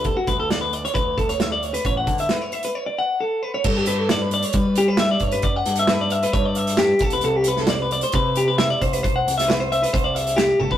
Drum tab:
CC |----------------|----------------|x---------------|----------------|
HH |x-x-x-xxx-xxx-xx|x-xxx-xx--------|--x-x-xxx-x-x-xx|x-xxx-xxx-xxx-xx|
SD |----o-------o---|----o-----------|----o-------o---|----o-------o---|
T1 |----------------|----------------|----------------|----------------|
BD |o-o-----o-o-----|o-o-------------|o-------o-----o-|o-------o-----o-|

CC |----------------|----------------|
HH |x-x-x-xxx-x-x-xx|x-xxx-xxx-xxx---|
SD |---oo-------o---|---oo-------o---|
T1 |----------------|--------------o-|
BD |--------o-----o-|o-------o------o|